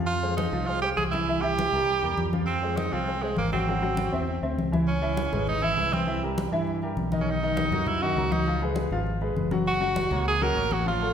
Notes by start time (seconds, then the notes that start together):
Already playing: F2 F3 F4 F5
0.07 F4, high conga
0.22 G#3 G#4 C5, high conga
0.37 D#4, high conga
0.52 C2 F3 F4 F5, high conga
0.67 G#3 F4 G#4 C5, high conga
0.82 G#3 G4 G#4 C5, high conga
0.97 C2 G#4, high conga
1.11 E3 E4 E5, high conga
1.28 E3 E4 E5, high conga
1.41 E3 E4 G4 E5, high conga
1.59 high conga
1.72 C2 G3 G4 A#4, high conga
1.88 high conga
2.02 E2 G3 G4 A#4, high conga
2.17 F2, high conga
2.33 F3 F4 F5, high conga
2.46 C4, high conga
2.62 G#3 G#4 C5, high conga
2.77 D#4, high conga
2.92 C2 F3 C4 F4 F5, high conga
3.07 G#3 G#4 C5, high conga
3.22 G#3 G#4 C5, high conga
3.37 G#1 A#3, high conga
3.52 F#3 C4 F#4 F#5, high conga
3.68 F#3 F#4 F#5, high conga
3.82 F#3 F#4 F#5, high conga
3.97 high conga
4.12 E2 C4 C5 E5, high conga
4.28 high conga
4.42 D2 C4 C5 E5, high conga
4.57 C#2, high conga
4.72 E3 E4 E5, high conga
4.88 C#4, high conga
5.02 E3 E4 E5, high conga
5.17 high conga
5.32 G#1 G#3 G#4 B4, high conga, low conga
5.47 D#4, high conga, low conga
5.62 E3 E4 E5, high conga
5.77 C2 G#3 G#4 B4, high conga
5.93 C4, high conga
6.07 E3 E4 E5, high conga
6.23 G3 G4 A#4, high conga
6.38 high conga
6.52 G2 E3 E4 E5, high conga
6.67 high conga
6.82 G3 G4 A#4, high conga
6.96 B1, high conga
7.12 D#3 D#4 D#5, high conga
7.21 C#4
7.27 high conga
7.31 D#4
7.43 D#3 D#4 D#5, high conga
7.57 high conga
7.71 F#2 F#3 F#4 A#4, high conga, low conga
7.86 E4, high conga, low conga
8.01 D#3 D#4 F#4 D#5, high conga
8.15 C#2 F#3 F#4 A#4, high conga
8.32 D#4, high conga
8.47 F3 F4 F5, high conga
8.61 G#3 G#4 B4, high conga
8.76 high conga
8.91 G#1 F3 F4 F5, high conga
9.07 high conga
9.21 G#3 G#4 B4, high conga
9.35 F#1, high conga
9.51 F#3 F#4 F#5, high conga
9.66 F#4, high conga
9.80 F#3 F#4 F#5, high conga
9.96 high conga
10.11 C#2 A#3 A#4 C#5, high conga, low conga
10.26 G#4, high conga
10.41 F#3 F#4 A#4 F#5, high conga
10.55 A1 A#3 A#4 C#5, high conga
10.71 F#4, high conga
10.86 F3 F4 F5, high conga
11.01 A3 A4 C#5, high conga